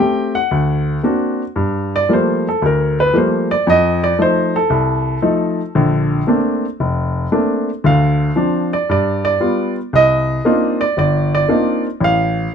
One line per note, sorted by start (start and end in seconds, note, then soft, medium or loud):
0.00 0.37 A3 medium
0.00 0.37 C4 medium
0.00 0.37 G4 medium
0.00 0.32 G5 medium
0.35 1.01 F#5 medium
0.51 0.97 D2 medium
1.03 1.41 A#3 soft
1.03 1.41 C4 soft
1.03 1.42 D4 soft
1.03 1.42 F#4 medium
1.56 2.02 G2 medium
1.96 2.11 D5 medium
2.09 2.46 F3 soft
2.09 2.47 G3 soft
2.09 2.47 A3 soft
2.09 2.47 A#3 medium
2.13 2.46 C5 medium
2.49 2.63 A4 medium
2.62 3.07 D2 medium
2.66 2.98 A#4 medium
3.00 3.15 B4 medium
3.13 3.51 F3 soft
3.13 3.51 G3 soft
3.13 3.51 A3 soft
3.13 3.52 A#3 medium
3.18 3.50 C5 medium
3.51 3.67 D5 medium
3.67 4.12 F2 medium
3.67 4.02 D#5 medium
4.04 4.19 D5 medium
4.19 4.56 F3 medium
4.19 4.56 A3 soft
4.19 4.56 D#4 medium
4.19 4.55 C5 medium
4.56 5.72 A4 medium
4.70 5.16 C2 medium
5.22 5.60 F3 medium
5.22 5.60 A3 medium
5.22 5.60 D#4 medium
5.75 6.21 A#1 medium
5.75 6.21 D3 medium
6.27 6.64 A3 medium
6.27 6.65 A#3 soft
6.27 6.65 C4 soft
6.27 6.65 D4 medium
6.80 7.25 F1 medium
7.32 7.69 A3 medium
7.32 7.69 A#3 soft
7.32 7.69 C4 soft
7.32 7.69 D4 medium
7.84 8.29 D2 medium
7.84 8.29 D3 medium
7.84 8.68 F5 medium
8.36 8.73 F3 medium
8.36 8.73 C4 soft
8.36 8.73 D4 medium
8.73 8.89 D5 medium
8.89 9.34 G2 medium
8.89 9.23 D5 medium
9.25 9.72 D5 medium
9.40 9.77 G3 soft
9.40 9.77 B3 soft
9.40 9.77 F4 medium
9.93 10.38 C2 medium
9.93 10.77 D#5 medium
10.45 10.82 A#3 medium
10.45 10.82 C4 soft
10.45 10.82 D4 soft
10.45 10.82 D#4 medium
10.45 10.82 F4 medium
10.81 10.97 D5 medium
10.97 11.42 G1 medium
10.97 11.32 D5 medium
11.35 11.82 D5 medium
11.49 11.86 A#3 medium
11.49 11.86 C4 soft
11.49 11.86 D4 soft
11.49 11.86 D#4 soft
11.49 11.86 F4 medium
12.01 12.46 A1 medium
12.01 12.54 F5 medium